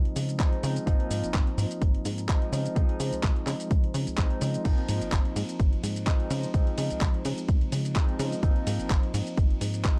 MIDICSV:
0, 0, Header, 1, 4, 480
1, 0, Start_track
1, 0, Key_signature, -4, "major"
1, 0, Tempo, 472441
1, 885, Time_signature, 4, 2, 24, 8
1, 10153, End_track
2, 0, Start_track
2, 0, Title_t, "Tine electric piano"
2, 0, Program_c, 0, 4
2, 0, Note_on_c, 0, 53, 96
2, 0, Note_on_c, 0, 56, 88
2, 0, Note_on_c, 0, 60, 88
2, 0, Note_on_c, 0, 63, 112
2, 375, Note_off_c, 0, 53, 0
2, 378, Note_off_c, 0, 56, 0
2, 380, Note_off_c, 0, 60, 0
2, 383, Note_off_c, 0, 63, 0
2, 399, Note_on_c, 0, 53, 96
2, 402, Note_on_c, 0, 56, 89
2, 405, Note_on_c, 0, 60, 93
2, 409, Note_on_c, 0, 63, 107
2, 856, Note_off_c, 0, 53, 0
2, 857, Note_off_c, 0, 56, 0
2, 859, Note_off_c, 0, 60, 0
2, 861, Note_off_c, 0, 63, 0
2, 874, Note_on_c, 0, 53, 97
2, 879, Note_on_c, 0, 58, 89
2, 884, Note_on_c, 0, 60, 83
2, 889, Note_on_c, 0, 63, 105
2, 2293, Note_off_c, 0, 53, 0
2, 2296, Note_off_c, 0, 58, 0
2, 2298, Note_off_c, 0, 60, 0
2, 2301, Note_off_c, 0, 63, 0
2, 2320, Note_on_c, 0, 53, 98
2, 2322, Note_on_c, 0, 56, 91
2, 2326, Note_on_c, 0, 60, 91
2, 2328, Note_on_c, 0, 63, 104
2, 2776, Note_off_c, 0, 53, 0
2, 2777, Note_off_c, 0, 56, 0
2, 2779, Note_off_c, 0, 60, 0
2, 2780, Note_off_c, 0, 63, 0
2, 2795, Note_on_c, 0, 53, 93
2, 2801, Note_on_c, 0, 56, 89
2, 2807, Note_on_c, 0, 60, 85
2, 2812, Note_on_c, 0, 63, 104
2, 4214, Note_off_c, 0, 53, 0
2, 4217, Note_off_c, 0, 56, 0
2, 4220, Note_off_c, 0, 60, 0
2, 4222, Note_off_c, 0, 63, 0
2, 4242, Note_on_c, 0, 53, 93
2, 4244, Note_on_c, 0, 56, 85
2, 4247, Note_on_c, 0, 60, 90
2, 4250, Note_on_c, 0, 63, 107
2, 4697, Note_off_c, 0, 53, 0
2, 4698, Note_off_c, 0, 56, 0
2, 4700, Note_off_c, 0, 60, 0
2, 4701, Note_off_c, 0, 63, 0
2, 4716, Note_on_c, 0, 53, 98
2, 4722, Note_on_c, 0, 58, 88
2, 4727, Note_on_c, 0, 60, 86
2, 4733, Note_on_c, 0, 63, 105
2, 6134, Note_off_c, 0, 53, 0
2, 6137, Note_off_c, 0, 58, 0
2, 6140, Note_off_c, 0, 60, 0
2, 6143, Note_off_c, 0, 63, 0
2, 6160, Note_on_c, 0, 53, 95
2, 6161, Note_on_c, 0, 56, 87
2, 6165, Note_on_c, 0, 60, 90
2, 6168, Note_on_c, 0, 63, 107
2, 6616, Note_off_c, 0, 53, 0
2, 6617, Note_off_c, 0, 56, 0
2, 6619, Note_off_c, 0, 60, 0
2, 6620, Note_off_c, 0, 63, 0
2, 6640, Note_on_c, 0, 53, 97
2, 6645, Note_on_c, 0, 56, 88
2, 6651, Note_on_c, 0, 60, 87
2, 6657, Note_on_c, 0, 63, 103
2, 8057, Note_off_c, 0, 53, 0
2, 8059, Note_off_c, 0, 56, 0
2, 8062, Note_off_c, 0, 60, 0
2, 8065, Note_off_c, 0, 63, 0
2, 8079, Note_on_c, 0, 53, 101
2, 8082, Note_on_c, 0, 56, 91
2, 8087, Note_on_c, 0, 60, 90
2, 8088, Note_on_c, 0, 63, 110
2, 8536, Note_off_c, 0, 53, 0
2, 8537, Note_off_c, 0, 56, 0
2, 8540, Note_off_c, 0, 60, 0
2, 8540, Note_off_c, 0, 63, 0
2, 8557, Note_on_c, 0, 53, 92
2, 8564, Note_on_c, 0, 58, 92
2, 8569, Note_on_c, 0, 60, 94
2, 8572, Note_on_c, 0, 63, 108
2, 9975, Note_off_c, 0, 53, 0
2, 9978, Note_off_c, 0, 58, 0
2, 9981, Note_off_c, 0, 60, 0
2, 9982, Note_off_c, 0, 63, 0
2, 10001, Note_on_c, 0, 53, 101
2, 10004, Note_on_c, 0, 56, 93
2, 10006, Note_on_c, 0, 60, 91
2, 10008, Note_on_c, 0, 63, 107
2, 10153, Note_off_c, 0, 53, 0
2, 10153, Note_off_c, 0, 56, 0
2, 10153, Note_off_c, 0, 60, 0
2, 10153, Note_off_c, 0, 63, 0
2, 10153, End_track
3, 0, Start_track
3, 0, Title_t, "Analog synth bass"
3, 0, Program_c, 1, 38
3, 164, Note_on_c, 1, 49, 86
3, 404, Note_on_c, 1, 37, 87
3, 420, Note_off_c, 1, 49, 0
3, 486, Note_off_c, 1, 37, 0
3, 644, Note_on_c, 1, 49, 111
3, 803, Note_off_c, 1, 49, 0
3, 884, Note_on_c, 1, 32, 101
3, 966, Note_off_c, 1, 32, 0
3, 1123, Note_on_c, 1, 44, 85
3, 1249, Note_off_c, 1, 44, 0
3, 1255, Note_on_c, 1, 32, 43
3, 1343, Note_off_c, 1, 32, 0
3, 1364, Note_on_c, 1, 32, 102
3, 1446, Note_off_c, 1, 32, 0
3, 1604, Note_on_c, 1, 44, 109
3, 1686, Note_off_c, 1, 44, 0
3, 1845, Note_on_c, 1, 32, 96
3, 2003, Note_off_c, 1, 32, 0
3, 2087, Note_on_c, 1, 44, 89
3, 2326, Note_on_c, 1, 32, 82
3, 2341, Note_off_c, 1, 44, 0
3, 2407, Note_off_c, 1, 32, 0
3, 2565, Note_on_c, 1, 49, 109
3, 2723, Note_off_c, 1, 49, 0
3, 2807, Note_on_c, 1, 37, 106
3, 2888, Note_off_c, 1, 37, 0
3, 3046, Note_on_c, 1, 49, 92
3, 3171, Note_off_c, 1, 49, 0
3, 3177, Note_on_c, 1, 37, 42
3, 3264, Note_off_c, 1, 37, 0
3, 3287, Note_on_c, 1, 37, 99
3, 3368, Note_off_c, 1, 37, 0
3, 3522, Note_on_c, 1, 49, 105
3, 3605, Note_off_c, 1, 49, 0
3, 3768, Note_on_c, 1, 37, 102
3, 3848, Note_off_c, 1, 37, 0
3, 3893, Note_on_c, 1, 49, 42
3, 3982, Note_off_c, 1, 49, 0
3, 4006, Note_on_c, 1, 49, 101
3, 4129, Note_off_c, 1, 49, 0
3, 4135, Note_on_c, 1, 37, 45
3, 4223, Note_off_c, 1, 37, 0
3, 4247, Note_on_c, 1, 37, 88
3, 4327, Note_off_c, 1, 37, 0
3, 4488, Note_on_c, 1, 49, 96
3, 4644, Note_off_c, 1, 49, 0
3, 4726, Note_on_c, 1, 32, 99
3, 4807, Note_off_c, 1, 32, 0
3, 4966, Note_on_c, 1, 44, 92
3, 5089, Note_off_c, 1, 44, 0
3, 5096, Note_on_c, 1, 32, 41
3, 5183, Note_off_c, 1, 32, 0
3, 5207, Note_on_c, 1, 32, 97
3, 5287, Note_off_c, 1, 32, 0
3, 5447, Note_on_c, 1, 44, 107
3, 5527, Note_off_c, 1, 44, 0
3, 5686, Note_on_c, 1, 32, 86
3, 5843, Note_off_c, 1, 32, 0
3, 5926, Note_on_c, 1, 44, 85
3, 6166, Note_on_c, 1, 32, 87
3, 6181, Note_off_c, 1, 44, 0
3, 6247, Note_off_c, 1, 32, 0
3, 6406, Note_on_c, 1, 49, 110
3, 6564, Note_off_c, 1, 49, 0
3, 6645, Note_on_c, 1, 37, 101
3, 6726, Note_off_c, 1, 37, 0
3, 6888, Note_on_c, 1, 49, 92
3, 7013, Note_off_c, 1, 49, 0
3, 7019, Note_on_c, 1, 37, 42
3, 7105, Note_off_c, 1, 37, 0
3, 7126, Note_on_c, 1, 37, 96
3, 7207, Note_off_c, 1, 37, 0
3, 7370, Note_on_c, 1, 49, 107
3, 7449, Note_off_c, 1, 49, 0
3, 7606, Note_on_c, 1, 37, 89
3, 7733, Note_off_c, 1, 37, 0
3, 7739, Note_on_c, 1, 49, 43
3, 7825, Note_off_c, 1, 49, 0
3, 7847, Note_on_c, 1, 49, 84
3, 8087, Note_on_c, 1, 37, 85
3, 8102, Note_off_c, 1, 49, 0
3, 8167, Note_off_c, 1, 37, 0
3, 8326, Note_on_c, 1, 49, 111
3, 8483, Note_off_c, 1, 49, 0
3, 8564, Note_on_c, 1, 32, 102
3, 8646, Note_off_c, 1, 32, 0
3, 8808, Note_on_c, 1, 44, 89
3, 8932, Note_off_c, 1, 44, 0
3, 8938, Note_on_c, 1, 32, 39
3, 9025, Note_off_c, 1, 32, 0
3, 9045, Note_on_c, 1, 32, 100
3, 9126, Note_off_c, 1, 32, 0
3, 9287, Note_on_c, 1, 44, 111
3, 9367, Note_off_c, 1, 44, 0
3, 9526, Note_on_c, 1, 32, 96
3, 9683, Note_off_c, 1, 32, 0
3, 9764, Note_on_c, 1, 44, 88
3, 10006, Note_on_c, 1, 32, 84
3, 10021, Note_off_c, 1, 44, 0
3, 10087, Note_off_c, 1, 32, 0
3, 10153, End_track
4, 0, Start_track
4, 0, Title_t, "Drums"
4, 53, Note_on_c, 9, 42, 27
4, 154, Note_off_c, 9, 42, 0
4, 162, Note_on_c, 9, 46, 104
4, 164, Note_on_c, 9, 69, 82
4, 264, Note_off_c, 9, 46, 0
4, 266, Note_off_c, 9, 69, 0
4, 294, Note_on_c, 9, 42, 55
4, 296, Note_on_c, 9, 69, 49
4, 396, Note_off_c, 9, 42, 0
4, 397, Note_off_c, 9, 69, 0
4, 404, Note_on_c, 9, 36, 110
4, 404, Note_on_c, 9, 39, 107
4, 405, Note_on_c, 9, 42, 47
4, 406, Note_on_c, 9, 69, 33
4, 506, Note_off_c, 9, 36, 0
4, 506, Note_off_c, 9, 39, 0
4, 506, Note_off_c, 9, 42, 0
4, 508, Note_off_c, 9, 69, 0
4, 534, Note_on_c, 9, 42, 27
4, 635, Note_off_c, 9, 42, 0
4, 643, Note_on_c, 9, 46, 104
4, 645, Note_on_c, 9, 69, 84
4, 745, Note_off_c, 9, 46, 0
4, 747, Note_off_c, 9, 69, 0
4, 775, Note_on_c, 9, 42, 54
4, 776, Note_on_c, 9, 69, 46
4, 876, Note_off_c, 9, 42, 0
4, 878, Note_off_c, 9, 69, 0
4, 884, Note_on_c, 9, 36, 105
4, 887, Note_on_c, 9, 42, 57
4, 888, Note_on_c, 9, 69, 37
4, 986, Note_off_c, 9, 36, 0
4, 988, Note_off_c, 9, 42, 0
4, 990, Note_off_c, 9, 69, 0
4, 1015, Note_on_c, 9, 42, 26
4, 1117, Note_off_c, 9, 42, 0
4, 1125, Note_on_c, 9, 46, 107
4, 1127, Note_on_c, 9, 69, 86
4, 1227, Note_off_c, 9, 46, 0
4, 1228, Note_off_c, 9, 69, 0
4, 1256, Note_on_c, 9, 42, 53
4, 1257, Note_on_c, 9, 69, 45
4, 1357, Note_off_c, 9, 42, 0
4, 1359, Note_off_c, 9, 69, 0
4, 1364, Note_on_c, 9, 36, 105
4, 1365, Note_on_c, 9, 39, 126
4, 1365, Note_on_c, 9, 42, 57
4, 1366, Note_on_c, 9, 69, 36
4, 1466, Note_off_c, 9, 36, 0
4, 1466, Note_off_c, 9, 39, 0
4, 1466, Note_off_c, 9, 42, 0
4, 1468, Note_off_c, 9, 69, 0
4, 1495, Note_on_c, 9, 42, 28
4, 1597, Note_off_c, 9, 42, 0
4, 1606, Note_on_c, 9, 46, 100
4, 1608, Note_on_c, 9, 69, 83
4, 1708, Note_off_c, 9, 46, 0
4, 1709, Note_off_c, 9, 69, 0
4, 1736, Note_on_c, 9, 42, 57
4, 1738, Note_on_c, 9, 69, 52
4, 1838, Note_off_c, 9, 42, 0
4, 1840, Note_off_c, 9, 69, 0
4, 1845, Note_on_c, 9, 36, 110
4, 1845, Note_on_c, 9, 42, 57
4, 1847, Note_on_c, 9, 69, 35
4, 1947, Note_off_c, 9, 36, 0
4, 1947, Note_off_c, 9, 42, 0
4, 1948, Note_off_c, 9, 69, 0
4, 1976, Note_on_c, 9, 42, 31
4, 2078, Note_off_c, 9, 42, 0
4, 2084, Note_on_c, 9, 46, 99
4, 2086, Note_on_c, 9, 69, 82
4, 2186, Note_off_c, 9, 46, 0
4, 2188, Note_off_c, 9, 69, 0
4, 2215, Note_on_c, 9, 42, 56
4, 2217, Note_on_c, 9, 69, 49
4, 2317, Note_off_c, 9, 42, 0
4, 2319, Note_off_c, 9, 69, 0
4, 2326, Note_on_c, 9, 36, 104
4, 2326, Note_on_c, 9, 39, 111
4, 2326, Note_on_c, 9, 42, 51
4, 2328, Note_on_c, 9, 69, 35
4, 2428, Note_off_c, 9, 36, 0
4, 2428, Note_off_c, 9, 39, 0
4, 2428, Note_off_c, 9, 42, 0
4, 2430, Note_off_c, 9, 69, 0
4, 2458, Note_on_c, 9, 42, 28
4, 2559, Note_off_c, 9, 42, 0
4, 2568, Note_on_c, 9, 46, 95
4, 2569, Note_on_c, 9, 69, 84
4, 2669, Note_off_c, 9, 46, 0
4, 2671, Note_off_c, 9, 69, 0
4, 2698, Note_on_c, 9, 42, 51
4, 2700, Note_on_c, 9, 69, 50
4, 2800, Note_off_c, 9, 42, 0
4, 2801, Note_off_c, 9, 69, 0
4, 2806, Note_on_c, 9, 42, 56
4, 2807, Note_on_c, 9, 36, 107
4, 2808, Note_on_c, 9, 69, 34
4, 2908, Note_off_c, 9, 36, 0
4, 2908, Note_off_c, 9, 42, 0
4, 2910, Note_off_c, 9, 69, 0
4, 2937, Note_on_c, 9, 42, 27
4, 3039, Note_off_c, 9, 42, 0
4, 3047, Note_on_c, 9, 46, 110
4, 3048, Note_on_c, 9, 69, 86
4, 3148, Note_off_c, 9, 46, 0
4, 3150, Note_off_c, 9, 69, 0
4, 3177, Note_on_c, 9, 42, 55
4, 3178, Note_on_c, 9, 69, 46
4, 3278, Note_off_c, 9, 42, 0
4, 3280, Note_off_c, 9, 69, 0
4, 3286, Note_on_c, 9, 39, 118
4, 3287, Note_on_c, 9, 36, 102
4, 3287, Note_on_c, 9, 42, 56
4, 3288, Note_on_c, 9, 69, 35
4, 3388, Note_off_c, 9, 39, 0
4, 3388, Note_off_c, 9, 42, 0
4, 3389, Note_off_c, 9, 36, 0
4, 3390, Note_off_c, 9, 69, 0
4, 3417, Note_on_c, 9, 42, 27
4, 3519, Note_off_c, 9, 42, 0
4, 3525, Note_on_c, 9, 39, 64
4, 3526, Note_on_c, 9, 46, 102
4, 3527, Note_on_c, 9, 69, 82
4, 3627, Note_off_c, 9, 39, 0
4, 3627, Note_off_c, 9, 46, 0
4, 3629, Note_off_c, 9, 69, 0
4, 3657, Note_on_c, 9, 42, 60
4, 3659, Note_on_c, 9, 69, 49
4, 3759, Note_off_c, 9, 42, 0
4, 3760, Note_off_c, 9, 69, 0
4, 3767, Note_on_c, 9, 36, 123
4, 3767, Note_on_c, 9, 42, 55
4, 3769, Note_on_c, 9, 69, 34
4, 3869, Note_off_c, 9, 36, 0
4, 3869, Note_off_c, 9, 42, 0
4, 3870, Note_off_c, 9, 69, 0
4, 3899, Note_on_c, 9, 42, 29
4, 4000, Note_off_c, 9, 42, 0
4, 4006, Note_on_c, 9, 46, 107
4, 4008, Note_on_c, 9, 69, 82
4, 4108, Note_off_c, 9, 46, 0
4, 4110, Note_off_c, 9, 69, 0
4, 4136, Note_on_c, 9, 42, 56
4, 4138, Note_on_c, 9, 69, 45
4, 4237, Note_off_c, 9, 42, 0
4, 4239, Note_off_c, 9, 69, 0
4, 4243, Note_on_c, 9, 39, 115
4, 4243, Note_on_c, 9, 42, 52
4, 4245, Note_on_c, 9, 69, 34
4, 4246, Note_on_c, 9, 36, 104
4, 4345, Note_off_c, 9, 39, 0
4, 4345, Note_off_c, 9, 42, 0
4, 4347, Note_off_c, 9, 69, 0
4, 4348, Note_off_c, 9, 36, 0
4, 4373, Note_on_c, 9, 42, 27
4, 4475, Note_off_c, 9, 42, 0
4, 4483, Note_on_c, 9, 46, 101
4, 4485, Note_on_c, 9, 69, 80
4, 4584, Note_off_c, 9, 46, 0
4, 4586, Note_off_c, 9, 69, 0
4, 4615, Note_on_c, 9, 42, 57
4, 4617, Note_on_c, 9, 69, 47
4, 4717, Note_off_c, 9, 42, 0
4, 4718, Note_off_c, 9, 69, 0
4, 4725, Note_on_c, 9, 42, 57
4, 4725, Note_on_c, 9, 49, 80
4, 4726, Note_on_c, 9, 36, 106
4, 4726, Note_on_c, 9, 69, 34
4, 4826, Note_off_c, 9, 42, 0
4, 4826, Note_off_c, 9, 49, 0
4, 4828, Note_off_c, 9, 36, 0
4, 4828, Note_off_c, 9, 69, 0
4, 4854, Note_on_c, 9, 42, 27
4, 4956, Note_off_c, 9, 42, 0
4, 4963, Note_on_c, 9, 46, 113
4, 4963, Note_on_c, 9, 51, 78
4, 4965, Note_on_c, 9, 69, 79
4, 5065, Note_off_c, 9, 46, 0
4, 5065, Note_off_c, 9, 51, 0
4, 5066, Note_off_c, 9, 69, 0
4, 5095, Note_on_c, 9, 42, 54
4, 5096, Note_on_c, 9, 69, 42
4, 5196, Note_off_c, 9, 42, 0
4, 5198, Note_off_c, 9, 69, 0
4, 5205, Note_on_c, 9, 36, 104
4, 5205, Note_on_c, 9, 39, 127
4, 5205, Note_on_c, 9, 42, 57
4, 5206, Note_on_c, 9, 69, 35
4, 5306, Note_off_c, 9, 39, 0
4, 5306, Note_off_c, 9, 42, 0
4, 5307, Note_off_c, 9, 36, 0
4, 5308, Note_off_c, 9, 69, 0
4, 5336, Note_on_c, 9, 42, 26
4, 5438, Note_off_c, 9, 42, 0
4, 5447, Note_on_c, 9, 46, 102
4, 5447, Note_on_c, 9, 51, 77
4, 5449, Note_on_c, 9, 69, 77
4, 5549, Note_off_c, 9, 46, 0
4, 5549, Note_off_c, 9, 51, 0
4, 5551, Note_off_c, 9, 69, 0
4, 5577, Note_on_c, 9, 42, 58
4, 5578, Note_on_c, 9, 69, 47
4, 5678, Note_off_c, 9, 42, 0
4, 5680, Note_off_c, 9, 69, 0
4, 5685, Note_on_c, 9, 36, 119
4, 5686, Note_on_c, 9, 42, 57
4, 5688, Note_on_c, 9, 69, 33
4, 5787, Note_off_c, 9, 36, 0
4, 5788, Note_off_c, 9, 42, 0
4, 5790, Note_off_c, 9, 69, 0
4, 5819, Note_on_c, 9, 42, 30
4, 5920, Note_off_c, 9, 42, 0
4, 5929, Note_on_c, 9, 46, 103
4, 5929, Note_on_c, 9, 51, 76
4, 5931, Note_on_c, 9, 69, 80
4, 6031, Note_off_c, 9, 46, 0
4, 6031, Note_off_c, 9, 51, 0
4, 6032, Note_off_c, 9, 69, 0
4, 6058, Note_on_c, 9, 42, 59
4, 6060, Note_on_c, 9, 69, 48
4, 6160, Note_off_c, 9, 42, 0
4, 6162, Note_off_c, 9, 69, 0
4, 6165, Note_on_c, 9, 36, 112
4, 6168, Note_on_c, 9, 39, 122
4, 6168, Note_on_c, 9, 42, 52
4, 6170, Note_on_c, 9, 69, 32
4, 6267, Note_off_c, 9, 36, 0
4, 6270, Note_off_c, 9, 39, 0
4, 6270, Note_off_c, 9, 42, 0
4, 6272, Note_off_c, 9, 69, 0
4, 6298, Note_on_c, 9, 42, 27
4, 6400, Note_off_c, 9, 42, 0
4, 6406, Note_on_c, 9, 46, 108
4, 6406, Note_on_c, 9, 51, 74
4, 6408, Note_on_c, 9, 69, 79
4, 6507, Note_off_c, 9, 46, 0
4, 6507, Note_off_c, 9, 51, 0
4, 6509, Note_off_c, 9, 69, 0
4, 6537, Note_on_c, 9, 42, 55
4, 6538, Note_on_c, 9, 69, 47
4, 6638, Note_off_c, 9, 42, 0
4, 6640, Note_off_c, 9, 69, 0
4, 6645, Note_on_c, 9, 36, 118
4, 6647, Note_on_c, 9, 42, 56
4, 6648, Note_on_c, 9, 69, 33
4, 6746, Note_off_c, 9, 36, 0
4, 6748, Note_off_c, 9, 42, 0
4, 6750, Note_off_c, 9, 69, 0
4, 6777, Note_on_c, 9, 42, 27
4, 6879, Note_off_c, 9, 42, 0
4, 6885, Note_on_c, 9, 46, 114
4, 6885, Note_on_c, 9, 51, 80
4, 6887, Note_on_c, 9, 69, 80
4, 6987, Note_off_c, 9, 46, 0
4, 6987, Note_off_c, 9, 51, 0
4, 6989, Note_off_c, 9, 69, 0
4, 7015, Note_on_c, 9, 42, 54
4, 7017, Note_on_c, 9, 69, 45
4, 7116, Note_off_c, 9, 42, 0
4, 7118, Note_off_c, 9, 69, 0
4, 7124, Note_on_c, 9, 39, 125
4, 7124, Note_on_c, 9, 42, 52
4, 7125, Note_on_c, 9, 36, 110
4, 7126, Note_on_c, 9, 69, 31
4, 7225, Note_off_c, 9, 39, 0
4, 7225, Note_off_c, 9, 42, 0
4, 7226, Note_off_c, 9, 36, 0
4, 7227, Note_off_c, 9, 69, 0
4, 7256, Note_on_c, 9, 42, 27
4, 7357, Note_off_c, 9, 42, 0
4, 7365, Note_on_c, 9, 46, 114
4, 7365, Note_on_c, 9, 51, 78
4, 7367, Note_on_c, 9, 69, 77
4, 7466, Note_off_c, 9, 46, 0
4, 7466, Note_off_c, 9, 51, 0
4, 7468, Note_off_c, 9, 69, 0
4, 7495, Note_on_c, 9, 42, 57
4, 7497, Note_on_c, 9, 69, 45
4, 7597, Note_off_c, 9, 42, 0
4, 7598, Note_off_c, 9, 69, 0
4, 7605, Note_on_c, 9, 36, 127
4, 7605, Note_on_c, 9, 42, 53
4, 7606, Note_on_c, 9, 69, 34
4, 7706, Note_off_c, 9, 42, 0
4, 7707, Note_off_c, 9, 36, 0
4, 7708, Note_off_c, 9, 69, 0
4, 7734, Note_on_c, 9, 42, 28
4, 7836, Note_off_c, 9, 42, 0
4, 7845, Note_on_c, 9, 46, 112
4, 7845, Note_on_c, 9, 51, 77
4, 7847, Note_on_c, 9, 69, 76
4, 7947, Note_off_c, 9, 46, 0
4, 7947, Note_off_c, 9, 51, 0
4, 7949, Note_off_c, 9, 69, 0
4, 7978, Note_on_c, 9, 42, 55
4, 7980, Note_on_c, 9, 69, 43
4, 8079, Note_off_c, 9, 42, 0
4, 8081, Note_off_c, 9, 69, 0
4, 8085, Note_on_c, 9, 36, 113
4, 8086, Note_on_c, 9, 39, 114
4, 8086, Note_on_c, 9, 42, 53
4, 8088, Note_on_c, 9, 69, 32
4, 8187, Note_off_c, 9, 36, 0
4, 8188, Note_off_c, 9, 39, 0
4, 8188, Note_off_c, 9, 42, 0
4, 8189, Note_off_c, 9, 69, 0
4, 8216, Note_on_c, 9, 42, 27
4, 8317, Note_off_c, 9, 42, 0
4, 8325, Note_on_c, 9, 46, 117
4, 8325, Note_on_c, 9, 51, 73
4, 8327, Note_on_c, 9, 69, 75
4, 8426, Note_off_c, 9, 46, 0
4, 8426, Note_off_c, 9, 51, 0
4, 8428, Note_off_c, 9, 69, 0
4, 8457, Note_on_c, 9, 42, 53
4, 8458, Note_on_c, 9, 69, 42
4, 8558, Note_off_c, 9, 42, 0
4, 8560, Note_off_c, 9, 69, 0
4, 8564, Note_on_c, 9, 36, 127
4, 8567, Note_on_c, 9, 42, 54
4, 8569, Note_on_c, 9, 69, 33
4, 8666, Note_off_c, 9, 36, 0
4, 8669, Note_off_c, 9, 42, 0
4, 8671, Note_off_c, 9, 69, 0
4, 8696, Note_on_c, 9, 42, 26
4, 8798, Note_off_c, 9, 42, 0
4, 8806, Note_on_c, 9, 46, 121
4, 8806, Note_on_c, 9, 51, 84
4, 8808, Note_on_c, 9, 69, 80
4, 8908, Note_off_c, 9, 46, 0
4, 8908, Note_off_c, 9, 51, 0
4, 8910, Note_off_c, 9, 69, 0
4, 8937, Note_on_c, 9, 42, 53
4, 8939, Note_on_c, 9, 69, 43
4, 9039, Note_off_c, 9, 42, 0
4, 9041, Note_off_c, 9, 69, 0
4, 9045, Note_on_c, 9, 36, 115
4, 9046, Note_on_c, 9, 39, 120
4, 9047, Note_on_c, 9, 42, 56
4, 9048, Note_on_c, 9, 69, 32
4, 9146, Note_off_c, 9, 36, 0
4, 9148, Note_off_c, 9, 39, 0
4, 9148, Note_off_c, 9, 42, 0
4, 9150, Note_off_c, 9, 69, 0
4, 9177, Note_on_c, 9, 42, 26
4, 9279, Note_off_c, 9, 42, 0
4, 9287, Note_on_c, 9, 46, 119
4, 9287, Note_on_c, 9, 51, 83
4, 9288, Note_on_c, 9, 69, 77
4, 9388, Note_off_c, 9, 46, 0
4, 9388, Note_off_c, 9, 51, 0
4, 9390, Note_off_c, 9, 69, 0
4, 9417, Note_on_c, 9, 42, 53
4, 9418, Note_on_c, 9, 69, 43
4, 9518, Note_off_c, 9, 42, 0
4, 9520, Note_off_c, 9, 69, 0
4, 9525, Note_on_c, 9, 36, 127
4, 9528, Note_on_c, 9, 42, 51
4, 9529, Note_on_c, 9, 69, 30
4, 9626, Note_off_c, 9, 36, 0
4, 9629, Note_off_c, 9, 42, 0
4, 9631, Note_off_c, 9, 69, 0
4, 9657, Note_on_c, 9, 42, 27
4, 9759, Note_off_c, 9, 42, 0
4, 9766, Note_on_c, 9, 46, 113
4, 9766, Note_on_c, 9, 51, 76
4, 9767, Note_on_c, 9, 69, 80
4, 9867, Note_off_c, 9, 46, 0
4, 9867, Note_off_c, 9, 51, 0
4, 9869, Note_off_c, 9, 69, 0
4, 9896, Note_on_c, 9, 42, 54
4, 9897, Note_on_c, 9, 69, 45
4, 9997, Note_off_c, 9, 42, 0
4, 9999, Note_off_c, 9, 69, 0
4, 10005, Note_on_c, 9, 36, 113
4, 10005, Note_on_c, 9, 39, 118
4, 10005, Note_on_c, 9, 42, 48
4, 10007, Note_on_c, 9, 69, 33
4, 10106, Note_off_c, 9, 36, 0
4, 10106, Note_off_c, 9, 39, 0
4, 10106, Note_off_c, 9, 42, 0
4, 10108, Note_off_c, 9, 69, 0
4, 10153, End_track
0, 0, End_of_file